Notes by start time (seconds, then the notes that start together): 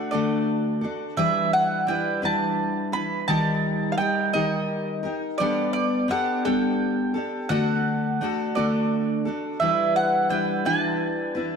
Already playing: A3 D4 F#4 A4 F#5
0.11 D3 A3 D4 F#4 A4 D5
0.81 D4 F#4 A4
1.17 E3 G3 D4 E4 B4 E5
1.53 F#5
1.87 G3 D4 E4 B4 G5
2.22 E3 G3 D4 E4 B4 A5
2.92 D4 E4 B4 B5
3.28 D#3 G3 D#4 G4 A#4 A5
3.92 F5
3.98 G3 D#4 G4 A#4 G5
4.33 D#3 G3 D#4 G4 A#4 D#5
5.03 D#4 G4 A#4
5.38 G3 B3 D4 G4 A4 D5
5.73 D5
6.08 B3 D4 G4 A4 F#5
6.45 G3 B3 D4 G4 A4 G5
7.14 D4 G4 A4
7.49 D3 A3 D4 F#4 A4 F#5
8.21 A3 D4 F#4 A4
8.55 D3 A3 D4 F#4 A4 D5
9.25 D4 F#4 A4
9.60 E3 G3 D4 E4 B4 E5
9.96 F#5
10.29 G3 D4 E4 B4 G5
10.65 E3 G3 D4 E4 B4 A5
11.35 D4 E4 B4